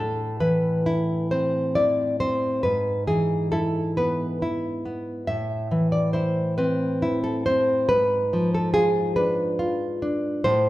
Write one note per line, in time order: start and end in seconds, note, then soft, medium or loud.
0.00 2.59 A2 soft
0.00 0.39 A4 medium
0.40 1.75 E3 soft
0.40 1.27 B4 medium
0.86 1.75 E4 soft
1.31 2.19 C4 soft
1.31 1.74 C5 medium
1.75 2.64 E4 soft
1.75 2.18 D5 medium
2.20 2.64 C4 soft
2.20 2.62 C5 medium
2.63 5.25 G#2 soft
2.63 3.06 B4 medium
3.07 4.42 E3 soft
3.07 3.50 G#4 medium
3.52 4.41 E4 soft
3.52 3.95 A4 medium
3.97 4.84 B3 soft
3.97 4.40 B4 medium
4.42 5.27 E4 soft
4.85 5.29 B3 soft
5.27 7.86 A2 soft
5.27 5.90 E5 medium
5.71 7.03 E3 soft
5.92 6.14 D5 soft
6.13 7.01 E4 soft
6.13 6.56 C5 medium
6.58 7.46 C4 soft
6.58 7.22 B4 medium
7.02 7.88 E4 soft
7.24 7.45 A4 medium
7.46 7.90 C4 soft
7.46 7.88 C5 medium
7.89 10.40 G#2 soft
7.89 8.50 B4 medium
8.33 9.60 F3 soft
8.55 8.73 A4 soft
8.74 9.58 F4 soft
8.74 9.15 G#4 medium
9.16 10.01 D4 soft
9.16 10.40 B4 medium
9.59 10.45 F4 soft
10.02 10.45 D4 soft
10.44 10.69 A2 soft
10.44 10.69 C5 medium